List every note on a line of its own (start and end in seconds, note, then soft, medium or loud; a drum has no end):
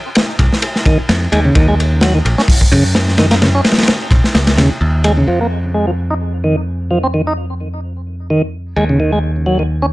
0.15 snare loud
0.15 ride medium
0.39 0.48 C2 medium
0.39 kick medium
0.39 ride medium
0.52 snare medium
0.62 ride medium
0.76 snare soft
0.85 0.98 D#3 loud
0.85 kick medium
0.85 ride medium
0.99 muted picked electric bass stroke soft
1.09 1.26 F2 medium
1.09 snare loud
1.09 ride medium
1.32 1.49 D#2 loud
1.32 1.40 G#3 medium
1.32 ride medium
1.45 1.55 C#3 loud
1.55 2.20 D#2 loud
1.55 1.67 D#3 medium
1.55 kick loud
1.55 ride medium
1.68 1.75 G#3 medium
1.80 ride medium
2.01 2.13 F#3 medium
2.01 snare loud
2.01 ride medium
2.15 2.19 D#3 medium
2.25 2.34 A#1 medium
2.25 ride medium
2.38 2.42 C#4 medium
2.38 snare medium
2.48 kick loud
2.48 open hi-hat medium
2.61 kick loud
2.72 3.59 F#2 medium
2.72 2.84 C#3 loud
2.72 ride medium
2.95 snare loud
2.95 ride medium
3.08 snare soft
3.18 3.26 D#3 medium
3.18 snare loud
3.18 ride medium
3.31 3.35 A#3 loud
3.31 snare loud
3.31 ride medium
3.41 3.49 C#3 medium
3.41 snare loud
3.41 ride medium
3.55 3.61 C#4 medium
3.65 snare medium
3.65 ride medium
3.71 snare medium
3.71 ride medium
3.78 snare medium
3.78 ride medium
3.83 snare medium
3.83 ride medium
3.88 snare loud
3.88 ride medium
4.11 4.20 A#1 medium
4.11 kick medium
4.11 ride medium
4.24 snare medium
4.34 4.58 C#2 medium
4.34 snare loud
4.34 ride medium
4.47 snare loud
4.47 ride medium
4.57 4.70 D#2 medium
4.57 4.70 C#3 loud
4.57 snare medium
4.57 ride medium
4.70 muted picked electric bass stroke soft
4.81 5.22 D#2 medium
5.04 5.12 G#3 medium
5.04 ride medium
5.17 5.27 C#3 loud
5.28 8.74 F2 medium
5.28 5.39 F3 medium
5.41 5.47 A#3 medium
5.74 5.86 G#3 medium
5.87 5.91 F3 medium
6.10 6.14 D#4 medium
6.44 6.56 D#3 medium
6.91 6.98 F3 medium
7.03 7.07 C4 medium
7.14 7.22 D#3 medium
7.27 7.33 D#4 medium
8.30 8.42 D#3 medium
8.76 9.93 D#2 medium
8.76 8.84 G#3 medium
8.89 8.99 C#3 medium
9.00 9.11 D#3 medium
9.12 9.19 G#3 medium
9.46 9.58 F#3 medium
9.59 9.63 D#3 medium
9.82 9.86 C#4 medium